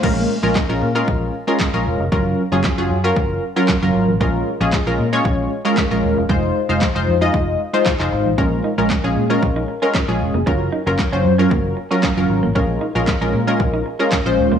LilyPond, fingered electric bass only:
\new Staff \with { instrumentName = "Fingered electric bass" } { \clef bass \time 4/4 \key bes \minor \tempo 4 = 115 bes,,8 r16 bes,,16 r16 bes,,16 bes,8 bes,,8 r8. bes,,16 e,,16 f,,16 | ges,,8 r16 ges,,16 r16 ges,,16 ges,8 ges,,8 r8. ges,,16 aes,,16 a,,16 | bes,,8 r16 bes,,16 r16 bes,,16 bes,8 bes,,8 r8. bes,,16 ees,,16 e,,16 | f,,8 r16 f,,16 r16 f,,16 f,8 f,,8 r8. f,,16 aes,,16 a,,16 |
bes,,8 r16 bes,,16 r16 bes,,16 bes,8 bes,,8 r8. bes,,16 e,,16 f,,16 | ges,,8 r16 ges,,16 r16 ges,,16 ges,8 ges,,8 r8. ges,,16 aes,,16 a,,16 | bes,,8 r16 bes,,16 r16 bes,,16 bes,8 bes,,8 r8. bes,,16 ees,,16 e,,16 | }